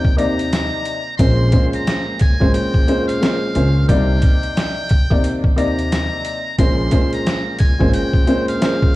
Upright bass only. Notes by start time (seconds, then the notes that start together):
Already playing: D#2
1.19 A#1
2.41 G#1
3.56 C#2
3.89 C2
5.11 D#2
6.59 A#1
7.81 G#1